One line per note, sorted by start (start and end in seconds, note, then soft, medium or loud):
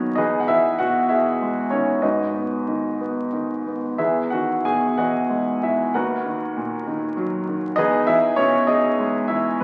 0.00 0.14 D#2 medium
0.00 0.14 B2 soft
0.00 0.19 D#3 soft
0.00 0.16 F#3 soft
0.00 0.20 B3 soft
0.00 0.20 C#4 medium
0.00 0.18 D#4 medium
0.00 0.20 F#4 medium
0.00 0.20 A#4 medium
0.00 0.18 B4 medium
0.00 0.20 C#5 medium
0.00 0.15 D#5 medium
0.15 1.99 E2 medium
0.15 0.40 D#4 medium
0.15 0.39 G#4 medium
0.15 0.40 B4 medium
0.15 0.41 D#5 medium
0.40 0.47 F#5 medium
0.48 1.69 E3 medium
0.48 0.77 E4 medium
0.48 0.79 E5 medium
0.79 2.00 B2 medium
0.79 1.08 F#4 medium
0.79 1.10 F#5 medium
1.09 1.68 E4 medium
1.09 1.68 G#4 medium
1.09 1.74 E5 medium
1.42 2.02 G#3 soft
1.70 2.03 D#3 soft
1.70 2.01 C#4 soft
1.70 2.04 C#5 medium
2.02 3.95 G#2 medium
2.02 3.28 D#4 soft
2.02 3.28 F#4 soft
2.02 3.28 B4 soft
2.02 3.28 D#5 medium
2.34 2.99 B3 soft
2.68 3.31 D#3 soft
3.01 3.65 B3 soft
3.33 3.97 D#3 soft
3.67 3.99 B3 soft
3.98 5.90 E2 soft
3.98 4.30 E4 soft
3.98 4.30 G#4 soft
3.98 4.30 B4 soft
3.98 4.33 E5 medium
4.30 5.59 D#3 soft
4.30 4.63 F#4 medium
4.30 4.65 F#5 medium
4.65 5.91 B2 soft
4.65 4.96 G#4 medium
4.65 4.99 G#5 medium
4.97 5.91 E3 soft
4.97 5.59 F#4 medium
4.97 5.59 D#5 medium
4.97 5.64 F#5 medium
5.30 5.92 G#3 soft
5.63 5.92 E4 medium
5.63 5.95 E5 medium
5.94 7.74 D#2 medium
5.94 7.14 F#4 medium
5.94 7.13 A#4 soft
5.94 7.14 B4 medium
5.94 7.13 F#5 medium
6.25 6.86 D#3 soft
6.57 7.74 A#2 medium
6.87 7.47 D#3 soft
7.17 7.76 F#3 medium
7.49 7.78 D#3 soft
7.76 9.57 E2 medium
7.76 8.06 D#4 medium
7.76 8.06 G#4 medium
7.76 8.06 B4 medium
7.76 8.08 D#5 loud
8.07 9.26 E3 medium
8.07 8.37 E4 medium
8.07 8.39 E5 loud
8.36 9.57 B2 medium
8.36 8.67 C#4 medium
8.36 8.69 C#5 medium
8.67 9.26 D#4 medium
8.67 9.26 G#4 medium
8.67 9.31 D#5 medium
9.00 9.59 G#3 soft
9.28 9.60 E3 soft
9.28 9.59 E4 medium
9.28 9.61 E5 medium
9.60 9.64 B4 medium